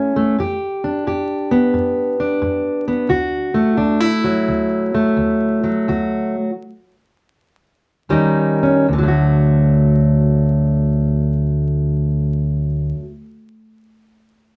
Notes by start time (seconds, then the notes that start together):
Already playing: A2 A3 C#4 E4
0.16 A3
0.39 G2 G4
0.84 D4
1.07 G2 G4
1.51 B3
1.74 G2
2.20 D4
2.42 G2
2.88 B3
3.09 D2 F#4
3.54 A3
3.77 D2 D4
4.00 E4
4.24 F#3
4.48 D2
4.94 A3
5.17 D2
5.64 F#3
5.88 D2 F#4
8.09 D#2 D#3 G3 C#4 D#4
8.63 C#4
8.88 D2
8.93 D3
8.98 F#3
9.03 A3
9.08 F#4